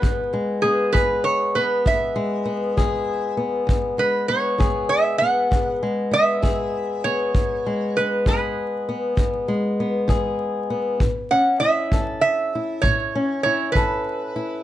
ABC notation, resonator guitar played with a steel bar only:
X:1
M:12/8
L:1/8
Q:3/8=66
K:E
V:1 name="Resonator guitar played with a steel bar"
B2 G B c B e4- e z | z B c2 e f2 z e3 c- | c2 B B4 z4 z | z f e2 e2 c2 c B3 |]